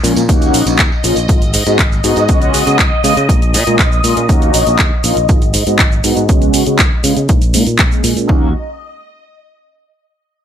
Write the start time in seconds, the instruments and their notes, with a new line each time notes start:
0.03 fingered electric bass A#2, analog polysynth F3 G#3 A#3 C#4, open hi-hat, cabasa
0.16 fingered electric bass A#2, closed hi-hat, tambourine, cabasa
0.28 fingered electric bass D#2, analog polysynth A#3 C#4 D#4 F#4, string machine D#5, kick, closed hi-hat, tambourine, cabasa
0.42 closed hi-hat, tambourine, cabasa
0.54 fingered electric bass A#1, open hi-hat, cabasa
0.66 fingered electric bass A#1, analog polysynth A#3 C#4 D#4 F#4, closed hi-hat, tambourine, cabasa
0.79 fingered electric bass D#2, kick, clap, closed hi-hat, tambourine, cabasa
0.92 tambourine
1.03 fingered electric bass A#1, analog polysynth A#3 C#4 D#4 F4, open hi-hat, cabasa
1.16 fingered electric bass A#1, closed hi-hat, tambourine, cabasa
1.28 fingered electric bass G#1, analog polysynth G#3 B3 D#4 F4, kick, closed hi-hat, tambourine, cabasa
1.42 closed hi-hat, tambourine, cabasa
1.54 fingered electric bass G#2, open hi-hat, cabasa
1.66 fingered electric bass G#2, analog polysynth G#3 B3 D#4 F#4, closed hi-hat, tambourine, cabasa
1.79 fingered electric bass G#1, kick, clap, closed hi-hat, tambourine, cabasa
1.92 tambourine, cabasa
2.03 fingered electric bass G#2, analog polysynth G#3 B3 D#4 F#4, open hi-hat, cabasa
2.16 fingered electric bass G#2, closed hi-hat, tambourine, cabasa
2.28 fingered electric bass C#2, analog polysynth G#3 B3 C#4 F#4, kick, closed hi-hat, tambourine, cabasa
2.42 closed hi-hat, tambourine, cabasa
2.54 fingered electric bass C#3, open hi-hat, cabasa
2.66 fingered electric bass C#3, analog polysynth G#3 B3 C#4 F#4, closed hi-hat, tambourine, cabasa
2.79 fingered electric bass C#2, kick, clap, closed hi-hat, cabasa
2.92 tambourine
3.03 fingered electric bass C#3, analog polysynth G#3 B3 C#4 F4, open hi-hat, cabasa
3.16 fingered electric bass C#3, closed hi-hat, tambourine, cabasa
3.28 fingered electric bass A#1, analog polysynth G#3 A#3 C#4 D#4, kick, closed hi-hat, tambourine, cabasa
3.42 closed hi-hat, tambourine, cabasa
3.54 fingered electric bass A#2, open hi-hat, cabasa
3.66 fingered electric bass A#2, analog polysynth G#3 A#3 C#4 F4, closed hi-hat, tambourine, cabasa
3.79 fingered electric bass A#1, kick, clap, closed hi-hat, cabasa
3.92 cabasa
4.04 fingered electric bass A#2, analog polysynth G#3 A#3 C#4 F4, open hi-hat, cabasa
4.17 fingered electric bass A#2, closed hi-hat, tambourine, cabasa
4.29 fingered electric bass D#2, analog polysynth A#3 C#4 D#4 F#4, kick, closed hi-hat, cabasa
4.42 closed hi-hat, tambourine, cabasa
4.54 fingered electric bass A#1, open hi-hat, cabasa
4.67 fingered electric bass A#1, analog polysynth A#3 C#4 D#4 F#4, closed hi-hat, tambourine, cabasa
4.79 kick, clap, closed hi-hat, cabasa
5.04 fingered electric bass A#1, analog polysynth A#3 C#4 D#4 F4, open hi-hat, cabasa
5.16 fingered electric bass A#1, closed hi-hat, tambourine, cabasa
5.29 fingered electric bass G#1, analog polysynth G#3 B3 D#4 F4, kick, closed hi-hat, cabasa
5.42 closed hi-hat, cabasa
5.54 fingered electric bass G#2, open hi-hat, cabasa
5.66 fingered electric bass G#2, analog polysynth G#3 B3 D#4 F#4, closed hi-hat, cabasa
5.79 fingered electric bass G#1, kick, clap, closed hi-hat, cabasa
5.92 cabasa
6.03 fingered electric bass G#2, analog polysynth G#3 B3 D#4 F#4, open hi-hat, cabasa
6.17 fingered electric bass G#2, closed hi-hat, cabasa
6.28 fingered electric bass C#2, analog polysynth G#3 B3 C#4 F#4, kick, closed hi-hat, cabasa
6.42 closed hi-hat, cabasa
6.54 fingered electric bass C#3, open hi-hat, cabasa
6.66 fingered electric bass C#3, analog polysynth G#3 B3 C#4 F#4, closed hi-hat, cabasa
6.79 fingered electric bass C#2, kick, clap, closed hi-hat, cabasa
7.04 fingered electric bass C#3, analog polysynth G#3 B3 C#4 F4, open hi-hat, cabasa
7.17 fingered electric bass C#3, closed hi-hat, cabasa
7.29 fingered electric bass A#1, analog polysynth G#3 A#3 C#4 D#4, kick, closed hi-hat, cabasa
7.42 closed hi-hat, cabasa
7.54 fingered electric bass A#2, analog polysynth G#3 A#3 C#4 D#4, open hi-hat, cabasa
7.67 fingered electric bass A#2, closed hi-hat, cabasa
7.79 fingered electric bass A#1, kick, clap, closed hi-hat, cabasa
7.92 analog polysynth G#3 A#3 C#4 G#4, cabasa
8.04 fingered electric bass A#2, open hi-hat, cabasa
8.16 fingered electric bass A#2, closed hi-hat, cabasa
8.28 fingered electric bass D#2, analog polysynth A#3 C#4 D#4 F#4, kick